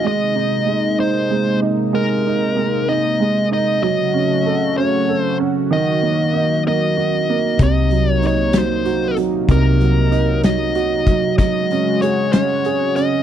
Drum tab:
HH |------|------|------|------|
SD |------|------|------|------|
BD |------|------|------|------|

HH |xxxxxx|xxxxxx|xxxxxx|
SD |---o--|---o--|---o--|
BD |o-----|o----o|o-----|